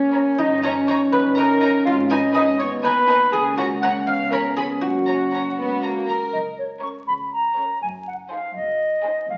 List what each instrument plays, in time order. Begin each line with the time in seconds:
Already playing: double bass section C#2, cello section C#2, french horn section A#3 C#4, harpsichord C#4, viola section C#4, clarinet C#4, flute C#5
0.15 violin section C#4 C#5 A#5
0.39 double bass section G1, cello section G2, french horn section C#4 D#4, harpsichord D#4, clarinet D#4, viola section D#4, flute D#5
0.63 harpsichord C#4, viola section C#4, clarinet C#4, violin section D#4 C#5 A#5, flute C#5
0.88 violin section D#4 C#5 A#5, viola section C#5, harpsichord C#5, clarinet C#5, flute C#6
1.12 double bass section G1, cello section G2, clarinet B4, viola section B4, harpsichord B4, flute B5
1.36 violin section D#4 C#5 A#5, clarinet A#4, viola section A#4, harpsichord A#4, flute A#5
1.61 violin section D#4 C#5 A#5
1.85 double bass section G#1, cello section G#2, clarinet F4, viola section F4, harpsichord F4, flute F5
2.09 violin section D#4 B4 G#5, clarinet D#4, viola section D#4, harpsichord D#4, flute D#5
2.34 violin section D#4 B4 G#5, harpsichord D#5, clarinet D#5, viola section D#5, flute D#6
2.59 double bass section D#2, cello section D#2, french horn section B3, clarinet C#5, viola section C#5, harpsichord C#5, flute C#6
2.83 violin section D#4 B4 G#5, viola section B4, clarinet B4, harpsichord B4, flute B5
3.08 violin section D#4 B4 G#5
3.32 double bass section C#2, cello section C#3, french horn section A#3 C#4, clarinet G#4, viola section G#4, harpsichord G#4, flute G#5
3.57 violin section C#4 C#5 A#5, clarinet F#4, viola section F#4, harpsichord F#4, flute F#5
3.81 violin section C#4 C#5 A#5, clarinet F#5, viola section F#5, harpsichord F#5, flute F#6
4.06 double bass section C#2, cello section C#3, french horn section B3, clarinet F5, viola section F5, harpsichord F5, flute F6
4.31 violin section C#4 C#5 B5, clarinet A#4, viola section A#4, harpsichord A#4, flute A#5
4.57 violin section C#4 C#5 B5, clarinet G#4, harpsichord G#4, viola section G#4, flute G#5
4.81 double bass section F#1, cello section F#2, french horn section A#3, clarinet F#4, harpsichord F#4, viola section F#4, flute F#5
5.07 violin section C#4 C#5 A#5
5.33 violin section C#4 C#5 A#5
5.57 double bass section C#2, cello section C#2, violin section B3
5.82 violin section A#3 A#5
6.08 violin section A#4 A#5
6.33 double bass section F#1, cello section F#2, flute D#5
6.58 flute C#5
6.82 viola section C#4, violin section A#4 C#5, flute C#6
7.07 double bass section C#2, cello section C#2, flute B5
7.33 flute A#5
7.57 viola section C#4, violin section A#4 C#5
7.81 double bass section F#1, cello section F#2, flute G#5
8.07 flute F#5
8.31 viola section D#4, violin section G#4 C5, flute F5
8.55 double bass section F#1, cello section F#2, flute D#5
9.04 viola section D#4, violin section G#4 C5
9.29 double bass section F1, cello section F2, flute F5